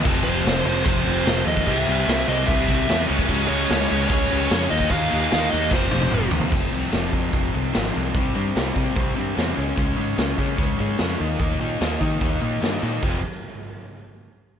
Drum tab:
CC |x-x-x-x-x-x-x-x-|x-x-x-x-x-x-x-x-|x-x-x-x-x-x-x-x-|x-x-x-x---------|
HH |----------------|----------------|----------------|----------------|
SD |----oo------o---|----o-------o---|----o-------o---|----oo--o-------|
T1 |----------------|----------------|----------------|----------oo----|
T2 |----------------|----------------|----------------|------------o---|
FT |----------------|----------------|----------------|--------------oo|
BD |o-------o------o|o-------o-o----o|o-------o------o|o-------o-------|

CC |x---------------|----------------|----------------|----------------|
HH |----o---o---o---|o---o---o---o---|o---o---o---o---|o---o---o---o---|
SD |----o-------o---|----o-------o---|----o-------o---|----o-------o---|
T1 |----------------|----------------|----------------|----------------|
T2 |----------------|----------------|----------------|----------------|
FT |----------------|----------------|----------------|----------------|
BD |o-----o-o-------|o-----o-o-------|o-----o-o-------|o-----o-o-------|

CC |x---------------|
HH |----------------|
SD |----------------|
T1 |----------------|
T2 |----------------|
FT |----------------|
BD |o---------------|